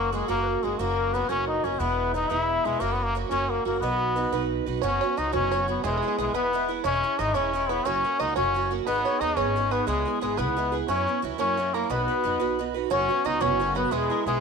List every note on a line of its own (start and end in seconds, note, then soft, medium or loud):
0.00 0.21 F#1 medium
0.00 0.11 F#3 medium
0.00 0.10 A#3 loud
0.00 0.12 A#3 medium
0.00 0.13 C#4 medium
0.00 0.14 F#4 medium
0.00 0.14 A#4 medium
0.12 0.28 F#3 medium
0.12 0.28 G#3 medium
0.12 0.28 A#3 medium
0.12 0.28 C#4 medium
0.12 0.27 F#4 medium
0.12 0.30 G#4 medium
0.28 0.58 F#1 medium
0.28 0.64 F#3 medium
0.28 0.65 A#3 loud
0.28 0.64 A#3 medium
0.28 0.63 C#4 medium
0.28 0.61 F#4 medium
0.28 0.41 A#4 medium
0.42 0.49 B4 medium
0.47 0.65 A#4 medium
0.63 0.77 F#1 medium
0.63 0.81 G#3 medium
0.63 0.78 A#3 medium
0.63 0.79 C#4 soft
0.63 0.79 F#4 medium
0.63 0.78 G#4 medium
0.79 1.22 F#1 medium
0.79 1.13 F#3 medium
0.79 1.16 A#3 loud
0.79 1.13 A#3 medium
0.79 1.14 C#4 medium
0.79 1.14 F#4 medium
0.79 1.15 A#4 loud
1.13 1.30 F#3 medium
1.13 1.29 A#3 medium
1.13 1.29 B3 medium
1.13 1.29 C#4 medium
1.13 1.28 F#4 medium
1.13 1.31 B4 medium
1.29 1.59 F#1 medium
1.29 1.65 F#3 medium
1.29 1.64 A#3 medium
1.29 1.47 C#4 loud
1.29 1.64 C#4 medium
1.29 1.63 F#4 medium
1.29 1.49 C#5 medium
1.48 1.66 D#4 medium
1.48 1.65 D#5 medium
1.64 1.77 F#1 medium
1.64 1.80 A#3 soft
1.64 1.81 C#4 medium
1.64 1.80 C#4 medium
1.64 1.80 F#4 medium
1.64 1.81 C#5 medium
1.79 2.22 E1 medium
1.79 2.13 E3 medium
1.79 2.14 G#3 medium
1.79 2.13 B3 loud
1.79 2.14 B3 medium
1.79 2.15 E4 medium
1.79 2.16 B4 medium
2.14 2.30 E3 medium
2.14 2.30 G#3 medium
2.14 2.29 B3 medium
2.14 2.32 D#4 loud
2.14 2.29 E4 medium
2.14 2.32 D#5 medium
2.30 2.60 E1 medium
2.30 2.66 E3 medium
2.30 2.65 G#3 medium
2.30 2.65 B3 medium
2.30 2.64 E4 medium
2.30 2.67 E4 loud
2.30 2.81 E5 medium
2.65 2.78 E1 medium
2.65 2.82 G#3 medium
2.65 2.80 G#3 soft
2.65 2.81 B3 medium
2.65 2.81 E4 medium
2.79 3.23 F#1 medium
2.79 3.14 F#3 medium
2.79 2.94 A#3 loud
2.79 3.15 A#3 medium
2.79 3.15 C#4 medium
2.79 3.16 F#4 medium
2.79 2.93 A#4 medium
2.93 3.05 B3 medium
3.04 3.15 A#3 loud
3.15 3.31 F#3 medium
3.15 3.31 A#3 medium
3.15 3.30 C#4 medium
3.15 3.30 F#4 medium
3.30 3.60 F#1 medium
3.30 3.82 F#3 medium
3.30 3.66 A#3 medium
3.30 3.51 C#4 loud
3.30 3.65 C#4 medium
3.30 3.65 F#4 medium
3.30 3.48 C#5 medium
3.49 3.66 A#3 medium
3.49 3.64 A#4 medium
3.65 3.79 F#1 medium
3.65 3.80 A#3 medium
3.65 3.82 A#3 medium
3.65 3.82 C#4 soft
3.65 3.81 F#4 medium
3.65 3.82 A#4 medium
3.81 4.24 B1 medium
3.81 4.47 B3 loud
3.81 4.15 B3 medium
3.81 4.15 D#4 medium
3.81 4.16 F#4 medium
3.81 4.51 B4 medium
3.81 4.17 B4 medium
4.16 4.32 B3 medium
4.16 4.32 D#4 medium
4.16 4.32 F#4 medium
4.16 4.31 B4 medium
4.32 4.61 B1 medium
4.32 4.83 B3 medium
4.32 4.67 D#4 medium
4.32 4.66 F#4 medium
4.32 4.66 B4 medium
4.66 4.80 B1 medium
4.66 4.83 D#4 medium
4.66 4.83 F#4 medium
4.66 4.82 B4 medium
4.82 4.99 F#1 loud
4.82 5.01 F#2 medium
4.82 5.02 C#3 medium
4.82 5.02 F#3 medium
4.82 5.02 B3 medium
4.82 5.01 C#4 medium
4.82 5.20 C#4 loud
4.82 5.00 F#4 medium
4.82 5.00 C#5 medium
4.82 5.15 C#5 medium
5.01 5.16 F#3 soft
5.01 5.16 B3 soft
5.01 5.17 C#4 soft
5.01 5.17 F#4 soft
5.01 5.16 C#5 medium
5.17 5.35 C#2 medium
5.17 5.32 F#3 medium
5.17 5.32 B3 medium
5.17 5.32 C#4 medium
5.17 5.33 D#4 loud
5.17 5.31 F#4 medium
5.17 5.34 D#5 medium
5.17 5.33 D#5 medium
5.33 5.76 F#1 loud
5.33 5.52 F#2 medium
5.33 5.52 C#3 medium
5.33 5.50 F#3 medium
5.33 5.51 B3 medium
5.33 5.52 C#4 medium
5.33 5.66 C#4 loud
5.33 5.52 F#4 medium
5.33 5.83 C#5 medium
5.33 5.50 C#5 medium
5.51 5.67 F#3 medium
5.51 5.68 B3 medium
5.51 5.67 C#4 medium
5.51 5.67 F#4 medium
5.51 5.81 C#5 loud
5.68 5.83 F#3 soft
5.68 5.83 B3 medium
5.68 5.84 C#4 medium
5.68 5.84 F#4 medium
5.83 5.99 E1 loud
5.83 6.02 E3 medium
5.83 6.03 G#3 medium
5.83 6.16 G#3 loud
5.83 6.02 B3 medium
5.83 6.01 E4 medium
5.83 6.35 G#4 medium
5.83 5.96 G#4 medium
5.97 6.07 G#4 medium
6.02 6.18 G#3 soft
6.02 6.19 B3 medium
6.02 6.18 E4 medium
6.08 6.17 G#4 medium
6.18 6.34 B1 medium
6.18 6.34 E3 medium
6.18 6.34 G#3 medium
6.18 6.34 B3 medium
6.18 6.33 E4 medium
6.18 6.33 G#4 medium
6.34 6.76 E1 loud
6.34 6.52 E3 medium
6.34 6.53 G#3 medium
6.34 6.53 B3 medium
6.34 6.71 B3 loud
6.34 6.53 E4 medium
6.34 6.72 B4 medium
6.34 6.70 B4 medium
6.53 6.69 E3 medium
6.53 6.69 G#3 medium
6.53 6.68 B3 medium
6.53 6.67 E4 medium
6.68 6.84 G#3 soft
6.68 6.85 B3 medium
6.68 6.84 E4 medium
6.84 7.00 E1 medium
6.84 7.03 E3 medium
6.84 7.03 G#3 medium
6.84 7.22 C#4 loud
6.84 7.03 C#4 medium
6.84 7.02 E4 medium
6.84 7.16 C#5 medium
6.84 7.17 C#5 medium
7.04 7.19 G#3 soft
7.04 7.19 C#4 medium
7.04 7.19 E4 medium
7.19 7.35 G#1 medium
7.19 7.35 E3 medium
7.19 7.35 G#3 medium
7.19 7.35 C#4 medium
7.19 7.38 D#4 loud
7.19 7.34 E4 medium
7.19 7.34 D#5 medium
7.19 7.36 D#5 medium
7.34 7.78 E1 medium
7.34 7.52 E3 medium
7.34 7.53 G#3 medium
7.34 7.54 C#4 medium
7.34 7.72 C#4 loud
7.34 7.54 E4 medium
7.34 7.52 C#5 medium
7.34 7.67 C#5 medium
7.53 7.69 E3 medium
7.53 7.70 G#3 medium
7.53 7.70 C#4 medium
7.53 7.68 E4 medium
7.53 7.83 C#5 medium
7.69 7.85 G#3 soft
7.69 7.88 B3 loud
7.69 7.85 C#4 medium
7.69 7.85 E4 medium
7.69 7.86 B4 medium
7.84 8.01 F#1 medium
7.84 8.04 F#3 medium
7.84 8.04 A#3 medium
7.84 8.22 C#4 loud
7.84 8.04 C#4 medium
7.84 8.03 F#4 medium
7.84 8.21 C#5 medium
7.84 8.19 C#5 medium
8.04 8.19 A#3 soft
8.04 8.20 C#4 soft
8.04 8.20 F#4 medium
8.19 8.37 C#2 medium
8.19 8.36 F#3 medium
8.19 8.36 A#3 medium
8.19 8.35 C#4 medium
8.19 8.35 D#4 loud
8.19 8.35 F#4 medium
8.19 8.35 D#5 medium
8.36 8.78 F#1 medium
8.36 8.53 F#3 medium
8.36 8.54 A#3 medium
8.36 8.72 C#4 loud
8.36 8.55 C#4 medium
8.36 8.55 F#4 medium
8.36 8.72 C#5 medium
8.54 8.70 F#3 medium
8.54 8.71 A#3 medium
8.54 8.70 C#4 medium
8.54 8.70 F#4 medium
8.71 8.87 A#3 soft
8.71 8.87 C#4 medium
8.71 8.86 F#4 medium
8.86 9.02 G#1 medium
8.86 9.05 G#3 medium
8.86 9.22 B3 loud
8.86 9.06 B3 medium
8.86 9.06 D#4 medium
8.86 9.05 G#4 medium
8.86 9.04 B4 medium
8.86 9.06 B4 medium
9.05 9.21 B3 soft
9.05 9.21 D#4 medium
9.05 9.21 G#4 medium
9.05 9.21 C#5 medium
9.05 9.20 C#5 medium
9.20 9.38 D#2 medium
9.20 9.37 G#3 medium
9.20 9.36 B3 medium
9.20 9.38 D#4 loud
9.20 9.36 D#4 medium
9.20 9.35 G#4 medium
9.20 9.35 D#5 medium
9.20 9.36 D#5 medium
9.36 9.79 G#1 medium
9.36 9.54 G#3 soft
9.36 9.55 B3 medium
9.36 9.74 C#4 loud
9.36 9.56 D#4 medium
9.36 9.56 G#4 medium
9.36 9.73 C#5 medium
9.36 9.69 C#5 medium
9.56 9.72 G#3 medium
9.56 9.72 B3 medium
9.56 9.71 D#4 medium
9.56 9.70 G#4 medium
9.71 9.87 B3 medium
9.71 9.87 B3 soft
9.71 9.88 D#4 soft
9.71 9.87 G#4 medium
9.71 9.88 B4 medium
9.87 10.03 C#2 loud
9.87 10.06 C#3 medium
9.87 10.20 G#3 loud
9.87 10.06 G#3 medium
9.87 10.06 B3 medium
9.87 10.05 E4 medium
9.87 10.22 G#4 medium
9.87 10.20 G#4 medium
9.87 10.04 G#4 medium
10.05 10.21 B3 soft
10.05 10.22 E4 soft
10.05 10.22 G#4 soft
10.21 10.40 G#1 medium
10.21 10.38 G#3 medium
10.21 10.40 G#3 medium
10.21 10.37 B3 medium
10.21 10.37 E4 medium
10.21 10.40 G#4 medium
10.21 10.37 G#4 medium
10.37 10.81 C#2 medium
10.37 10.57 C#3 medium
10.37 10.55 G#3 medium
10.37 10.77 B3 medium
10.37 10.56 B3 medium
10.37 10.57 E4 medium
10.37 10.57 G#4 medium
10.37 10.74 B4 medium
10.37 10.77 B4 medium
10.57 10.73 G#3 medium
10.57 10.73 B3 medium
10.57 10.72 E4 medium
10.57 10.71 G#4 medium
10.72 10.88 B3 soft
10.72 10.88 E4 medium
10.72 10.88 G#4 medium
10.88 11.04 F#2 medium
10.88 11.07 F#3 medium
10.88 11.07 B3 medium
10.88 11.21 C#4 loud
10.88 11.07 C#4 medium
10.88 11.06 E4 medium
10.88 11.21 C#5 medium
11.07 11.22 B3 soft
11.07 11.23 C#4 soft
11.07 11.23 E4 soft
11.22 11.39 C#2 medium
11.22 11.39 F#3 medium
11.22 11.39 B3 medium
11.22 11.37 C#4 medium
11.22 11.37 E4 medium
11.38 11.82 F#2 loud
11.38 11.56 F#3 medium
11.38 11.57 A#3 medium
11.38 11.58 C#4 medium
11.38 11.76 C#4 loud
11.38 11.57 E4 medium
11.38 11.72 C#5 medium
11.57 11.73 F#3 medium
11.57 11.74 A#3 medium
11.57 11.74 C#4 medium
11.57 11.73 E4 medium
11.74 11.92 A#3 medium
11.74 11.90 A#3 medium
11.74 11.90 C#4 medium
11.74 11.90 E4 medium
11.74 11.89 A#4 medium
11.90 12.06 B1 medium
11.90 12.08 B3 medium
11.90 12.75 B3 medium
11.90 12.09 D#4 medium
11.90 12.08 F#4 medium
11.90 12.63 B4 medium
11.90 12.71 B4 medium
11.90 12.07 B4 medium
12.08 12.23 D#4 soft
12.08 12.24 F#4 soft
12.08 12.24 B4 medium
12.24 12.40 F#2 medium
12.24 12.40 B3 medium
12.24 12.40 D#4 medium
12.24 12.39 F#4 medium
12.24 12.38 B4 medium
12.40 12.83 B1 medium
12.40 12.58 B3 medium
12.40 12.58 D#4 medium
12.40 12.59 F#4 medium
12.40 12.59 B4 medium
12.59 12.75 B3 medium
12.59 12.75 D#4 medium
12.59 12.74 F#4 medium
12.59 12.73 B4 medium
12.74 12.91 D#4 soft
12.74 12.90 F#4 medium
12.74 12.90 B4 medium
12.90 13.07 F#1 loud
12.90 13.09 F#2 medium
12.90 13.09 C#3 medium
12.90 13.10 F#3 medium
12.90 13.09 B3 medium
12.90 13.09 C#4 medium
12.90 13.28 C#4 loud
12.90 13.08 F#4 medium
12.90 13.27 C#5 loud
12.90 13.23 C#5 medium
13.09 13.23 F#3 soft
13.09 13.24 B3 soft
13.09 13.25 C#4 soft
13.09 13.25 F#4 medium
13.25 13.43 C#2 medium
13.25 13.40 F#3 medium
13.25 13.40 B3 medium
13.25 13.39 C#4 medium
13.25 13.44 D#4 loud
13.25 13.39 F#4 medium
13.25 13.42 D#5 medium
13.25 13.40 D#5 medium
13.40 13.84 F#1 loud
13.40 13.60 F#2 medium
13.40 13.60 C#3 medium
13.40 13.58 F#3 medium
13.40 13.59 B3 medium
13.40 13.60 C#4 medium
13.40 13.76 C#4 loud
13.40 13.60 F#4 medium
13.40 13.75 C#5 medium
13.40 13.74 C#5 loud
13.60 13.76 F#3 medium
13.60 13.75 B3 medium
13.60 13.75 C#4 medium
13.60 13.74 F#4 medium
13.75 13.91 F#3 soft
13.75 13.91 B3 medium
13.75 13.93 B3 medium
13.75 13.92 C#4 medium
13.75 13.91 F#4 medium
13.75 13.93 B4 medium
13.75 13.92 B4 medium
13.91 14.08 E1 medium
13.91 14.10 E3 medium
13.91 14.10 G#3 medium
13.91 14.26 G#3 loud
13.91 14.10 B3 medium
13.91 14.09 E4 medium
13.91 14.25 G#4 medium
13.91 14.10 G#4 medium
14.10 14.26 G#3 soft
14.10 14.26 B3 soft
14.10 14.26 E4 medium
14.10 14.26 A#4 medium
14.26 14.40 B1 medium
14.26 14.40 E3 medium
14.26 14.40 G#3 loud
14.26 14.40 G#3 medium
14.26 14.40 B3 medium
14.26 14.40 E4 medium
14.26 14.40 G#4 medium